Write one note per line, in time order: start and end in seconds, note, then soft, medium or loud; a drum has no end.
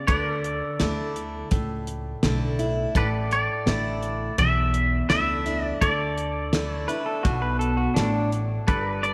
0.07 0.60 D2 medium
0.07 0.78 D3 medium
0.07 0.33 B4 medium
0.07 1.47 D5 medium
0.07 2.93 D5 medium
0.07 kick loud
0.07 closed hi-hat medium
0.33 2.92 A4 medium
0.44 closed hi-hat medium
0.79 1.41 D2 medium
0.79 1.48 D3 medium
0.79 1.48 A3 medium
0.79 1.48 D4 medium
0.79 1.49 E4 medium
0.79 snare loud
0.79 closed hi-hat medium
1.16 closed hi-hat medium
1.51 2.12 C#2 medium
1.51 2.87 A2 medium
1.51 kick loud
1.51 closed hi-hat medium
1.87 closed hi-hat medium
2.23 2.84 B1 medium
2.23 2.58 D3 medium
2.23 2.58 A3 medium
2.23 2.58 D4 medium
2.23 2.58 E4 medium
2.23 snare loud
2.23 closed hi-hat medium
2.59 2.94 D4 soft
2.59 2.93 E4 medium
2.59 closed hi-hat medium
2.95 3.47 A1 medium
2.95 4.31 A2 medium
2.95 5.79 A4 medium
2.95 3.07 B4 medium
2.95 5.80 D5 medium
2.95 kick medium
2.95 closed hi-hat medium
3.31 4.35 D5 medium
3.31 closed hi-hat medium
3.66 4.27 A1 medium
3.66 4.35 D3 soft
3.66 4.35 A3 medium
3.66 4.35 D4 medium
3.66 4.35 E4 medium
3.66 snare loud
3.66 closed hi-hat medium
4.03 closed hi-hat medium
4.38 4.99 B1 medium
4.38 5.74 E2 medium
4.38 5.06 E5 loud
4.38 kick medium
4.38 closed hi-hat medium
4.74 closed hi-hat medium
5.10 5.71 C#2 medium
5.10 5.44 A3 medium
5.10 5.45 D4 medium
5.10 5.44 E4 medium
5.10 5.65 E5 medium
5.10 snare loud
5.10 closed hi-hat medium
5.46 5.81 D4 soft
5.46 5.80 E4 medium
5.46 closed hi-hat medium
5.65 5.81 D5 medium
5.81 6.85 D2 medium
5.81 6.52 D3 medium
5.81 8.65 A4 medium
5.81 6.71 D5 medium
5.81 8.66 D5 medium
5.81 kick loud
5.81 closed hi-hat medium
6.18 closed hi-hat medium
6.53 6.88 D3 soft
6.53 6.88 A3 medium
6.53 6.88 D4 medium
6.53 6.87 E4 medium
6.53 snare loud
6.53 closed hi-hat medium
6.71 7.21 C#5 medium
6.88 7.24 D4 soft
6.88 7.23 E4 medium
6.88 7.06 B4 medium
6.88 closed hi-hat medium
7.06 7.24 A4 medium
7.23 7.86 B1 medium
7.23 7.93 B2 medium
7.23 7.41 F#4 medium
7.23 kick loud
7.23 closed hi-hat medium
7.42 7.59 B4 medium
7.59 7.77 A4 medium
7.59 closed hi-hat medium
7.77 7.95 F#4 medium
7.94 8.57 A1 medium
7.94 8.65 A2 medium
7.94 8.30 D4 medium
7.94 snare loud
7.94 closed hi-hat medium
8.32 closed hi-hat medium
8.67 9.14 G1 medium
8.67 9.14 G2 medium
8.67 8.92 A4 medium
8.67 9.01 B4 medium
8.67 9.14 D5 medium
8.67 kick loud
8.67 closed hi-hat medium
8.92 9.14 B4 medium
9.03 9.14 D5 medium
9.03 closed hi-hat medium